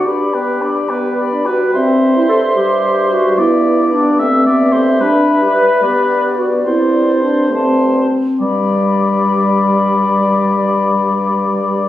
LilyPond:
<<
  \new Staff \with { instrumentName = "Flute" } { \time 6/8 \key g \major \tempo 4. = 71 b''8 g''8 b''8 g''8 b''8 g''8 | e''2.~ | e''4. e''4.~ | e''4. d''4.~ |
d''4. a''4 r8 | b''2.~ | b''2. | }
  \new Staff \with { instrumentName = "Oboe" } { \time 6/8 \key g \major d''8 b'8 d''8 b'8 d''8 b'8 | c''2. | d''4. e''8 d''8 c''8 | b'2. |
c''4. c''4 r8 | d''2.~ | d''2. | }
  \new Staff \with { instrumentName = "Clarinet" } { \time 6/8 \key g \major g'2~ g'8 r8 | c'8. e'16 a'8 g'4 fis'8 | e'4 d'8 c'4. | d'8. g'16 b'8 g'4 fis'8 |
e'4 d'8 c'4. | g2.~ | g2. | }
  \new Staff \with { instrumentName = "French horn" } { \time 6/8 \key g \major d'8 b8 d'8 b8. d'16 fis'8 | r4. g4. | b4. a8 b8 a8 | g4. b4. |
c'4. a8. r8. | g2.~ | g2. | }
  \new Staff \with { instrumentName = "Bassoon" } { \clef bass \time 6/8 \key g \major g,4. g,4. | g,2.~ | g,2. | g,2.~ |
g,2~ g,8 r8 | g,2.~ | g,2. | }
>>